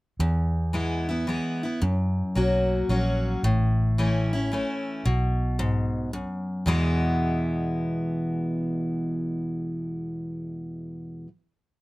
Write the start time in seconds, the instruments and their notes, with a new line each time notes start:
0.19 fingered electric bass E2, steel-string acoustic guitar E2
0.73 steel-string acoustic guitar E3 G#3 B3 E4
1.09 steel-string acoustic guitar B3 E4
1.27 steel-string acoustic guitar E3 G#3 B3 E4
1.63 steel-string acoustic guitar B3 E4
1.82 steel-string acoustic guitar F#2, fingered electric bass F#2
2.35 fingered electric bass B1, steel-string acoustic guitar F#3 A#3 C#4 F#4
2.89 fingered electric bass A#1, steel-string acoustic guitar F#3 A#3 C#4 F#4
3.43 fingered electric bass A1, steel-string acoustic guitar A2
3.98 steel-string acoustic guitar E3 A3 C#4 E4
4.33 steel-string acoustic guitar C#4 E4
4.52 steel-string acoustic guitar E3 A3 C#4 E4
5.05 fingered electric bass B1, steel-string acoustic guitar B2
5.59 steel-string acoustic guitar G#2
6.13 steel-string acoustic guitar F#2
6.66 steel-string acoustic guitar E2 B2 E3 G#3 B3 E4, fingered electric bass E2